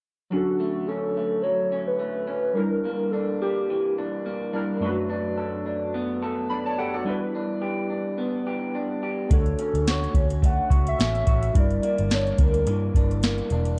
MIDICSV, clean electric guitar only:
0, 0, Header, 1, 2, 480
1, 0, Start_track
1, 0, Key_signature, 2, "major"
1, 0, Tempo, 561798
1, 270, Time_signature, 4, 2, 24, 8
1, 11783, End_track
2, 0, Start_track
2, 0, Title_t, "Clean electric guitar"
2, 0, Program_c, 0, 27
2, 274, Note_on_c, 0, 50, 69
2, 511, Note_on_c, 0, 57, 62
2, 756, Note_on_c, 0, 61, 61
2, 990, Note_off_c, 0, 57, 0
2, 999, Note_on_c, 0, 57, 53
2, 1229, Note_on_c, 0, 54, 58
2, 1460, Note_off_c, 0, 61, 0
2, 1471, Note_on_c, 0, 61, 61
2, 1692, Note_off_c, 0, 57, 0
2, 1702, Note_on_c, 0, 57, 50
2, 1934, Note_off_c, 0, 61, 0
2, 1945, Note_on_c, 0, 61, 57
2, 2195, Note_on_c, 0, 43, 77
2, 2238, Note_off_c, 0, 57, 0
2, 2239, Note_off_c, 0, 61, 0
2, 2241, Note_off_c, 0, 54, 0
2, 2436, Note_on_c, 0, 58, 57
2, 2674, Note_on_c, 0, 62, 63
2, 2912, Note_off_c, 0, 58, 0
2, 2921, Note_on_c, 0, 58, 52
2, 3163, Note_on_c, 0, 52, 58
2, 3188, Note_off_c, 0, 50, 0
2, 3401, Note_off_c, 0, 62, 0
2, 3404, Note_on_c, 0, 62, 59
2, 3628, Note_off_c, 0, 58, 0
2, 3638, Note_on_c, 0, 58, 52
2, 3871, Note_off_c, 0, 62, 0
2, 3874, Note_on_c, 0, 62, 54
2, 4110, Note_off_c, 0, 43, 0
2, 4114, Note_off_c, 0, 52, 0
2, 4119, Note_on_c, 0, 54, 70
2, 4165, Note_off_c, 0, 58, 0
2, 4351, Note_off_c, 0, 62, 0
2, 4354, Note_on_c, 0, 62, 63
2, 4593, Note_on_c, 0, 69, 61
2, 4832, Note_off_c, 0, 62, 0
2, 4836, Note_on_c, 0, 62, 52
2, 5078, Note_on_c, 0, 59, 61
2, 5310, Note_off_c, 0, 69, 0
2, 5319, Note_on_c, 0, 69, 61
2, 5549, Note_off_c, 0, 62, 0
2, 5552, Note_on_c, 0, 62, 51
2, 5791, Note_off_c, 0, 69, 0
2, 5795, Note_on_c, 0, 67, 56
2, 5929, Note_off_c, 0, 67, 0
2, 5929, Note_on_c, 0, 69, 47
2, 6032, Note_off_c, 0, 54, 0
2, 6035, Note_on_c, 0, 52, 70
2, 6084, Note_off_c, 0, 69, 0
2, 6277, Note_off_c, 0, 62, 0
2, 6281, Note_on_c, 0, 62, 60
2, 6508, Note_on_c, 0, 67, 61
2, 6745, Note_off_c, 0, 62, 0
2, 6748, Note_on_c, 0, 62, 50
2, 6985, Note_off_c, 0, 59, 0
2, 6989, Note_on_c, 0, 59, 66
2, 7225, Note_off_c, 0, 67, 0
2, 7235, Note_on_c, 0, 67, 62
2, 7472, Note_off_c, 0, 62, 0
2, 7476, Note_on_c, 0, 62, 57
2, 7705, Note_off_c, 0, 67, 0
2, 7715, Note_on_c, 0, 67, 61
2, 7951, Note_off_c, 0, 52, 0
2, 7951, Note_on_c, 0, 50, 75
2, 8000, Note_off_c, 0, 59, 0
2, 8003, Note_off_c, 0, 67, 0
2, 8192, Note_off_c, 0, 62, 0
2, 8195, Note_on_c, 0, 61, 57
2, 8436, Note_on_c, 0, 66, 60
2, 8661, Note_off_c, 0, 61, 0
2, 8672, Note_on_c, 0, 61, 51
2, 8906, Note_on_c, 0, 57, 60
2, 9133, Note_off_c, 0, 66, 0
2, 9143, Note_on_c, 0, 66, 63
2, 9377, Note_off_c, 0, 61, 0
2, 9387, Note_on_c, 0, 61, 53
2, 9617, Note_off_c, 0, 66, 0
2, 9627, Note_on_c, 0, 66, 58
2, 9872, Note_on_c, 0, 43, 72
2, 9919, Note_off_c, 0, 57, 0
2, 9919, Note_off_c, 0, 61, 0
2, 9920, Note_off_c, 0, 66, 0
2, 10108, Note_on_c, 0, 58, 54
2, 10345, Note_on_c, 0, 62, 61
2, 10587, Note_off_c, 0, 58, 0
2, 10596, Note_on_c, 0, 58, 55
2, 10834, Note_on_c, 0, 52, 66
2, 10860, Note_off_c, 0, 50, 0
2, 11067, Note_off_c, 0, 62, 0
2, 11070, Note_on_c, 0, 62, 66
2, 11300, Note_off_c, 0, 58, 0
2, 11311, Note_on_c, 0, 58, 60
2, 11550, Note_off_c, 0, 62, 0
2, 11553, Note_on_c, 0, 62, 60
2, 11783, Note_off_c, 0, 43, 0
2, 11783, Note_off_c, 0, 52, 0
2, 11783, Note_off_c, 0, 58, 0
2, 11783, Note_off_c, 0, 62, 0
2, 11783, End_track
0, 0, End_of_file